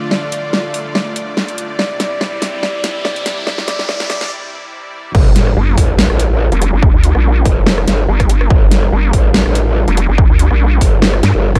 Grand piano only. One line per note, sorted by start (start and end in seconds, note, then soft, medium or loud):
0.11 0.87 D5 medium
0.95 1.71 D5 medium
1.79 2.19 D5 loud
2.21 2.61 D5 loud
2.63 3.03 D5 loud
3.05 3.45 D5 loud
3.47 3.66 D5 loud
3.68 3.87 D5 loud
3.89 4.08 D5 loud
4.10 4.29 D5 loud